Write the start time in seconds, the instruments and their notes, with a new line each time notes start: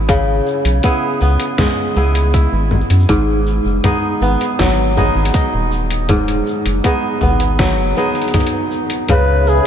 Already playing: analog synth bass G#1, kora G#3 B3 E4 G#4
0.09 kora C#3, kick, closed hi-hat, cabasa
0.46 cabasa
0.64 analog synth bass B1, closed hi-hat, cabasa
0.83 kora B3 E4 G#4, kick, closed hi-hat, cabasa
1.21 analog synth bass C#2, kora B3, cabasa
1.40 closed hi-hat, cabasa
1.58 kora G#3, kick, snare, closed hi-hat, low conga, cabasa
1.96 analog synth bass C#2, kora B3 E4 G#4, cabasa
2.15 closed hi-hat, cabasa
2.34 kora E4, kick, closed hi-hat, cabasa
2.52 analog synth bass G#1
2.71 low conga, cabasa
2.81 cabasa
2.90 analog synth bass F#2, closed hi-hat, cabasa
3.00 cabasa
3.09 analog synth bass G#1, kora G#2, kick, closed hi-hat, cabasa
3.47 cabasa
3.65 analog synth bass F#1, cabasa
3.84 kora B3 D#4 G#4, kick, closed hi-hat, low conga, cabasa
4.21 analog synth bass G#1, kora B3, cabasa
4.41 closed hi-hat, cabasa
4.59 analog synth bass G#1, kora F#3, kick, snare
4.97 kora B3 D#4 G#4, low conga, cabasa
5.15 analog synth bass G#1, cabasa
5.25 closed hi-hat
5.34 kora D#4, kick, closed hi-hat, cabasa
5.53 analog synth bass D#1
5.71 cabasa
5.90 closed hi-hat, cabasa
6.09 kora G#2, kick, closed hi-hat, low conga, cabasa
6.28 closed hi-hat
6.47 cabasa
6.65 analog synth bass F#1, closed hi-hat, cabasa
6.75 cabasa
6.84 kora B3 D#4 G#4, kick, closed hi-hat, cabasa
6.94 cabasa
7.21 analog synth bass G#1, kora B3, low conga, cabasa
7.40 closed hi-hat, cabasa
7.59 kora F#3, kick, snare, closed hi-hat, cabasa
7.78 analog synth bass F#1, cabasa
7.96 kora B3 D#4 G#4, cabasa
8.15 closed hi-hat, cabasa
8.21 closed hi-hat
8.28 closed hi-hat
8.34 kora D#4, kick, closed hi-hat, low conga, cabasa
8.40 closed hi-hat
8.46 closed hi-hat
8.71 cabasa
8.90 closed hi-hat, cabasa
9.08 analog synth bass C#2, kora C#3, ambient pad G#4 C#5 E5 B5, flugelhorn B4, kick, closed hi-hat, low conga, cabasa
9.47 flugelhorn G#4, cabasa
9.56 cabasa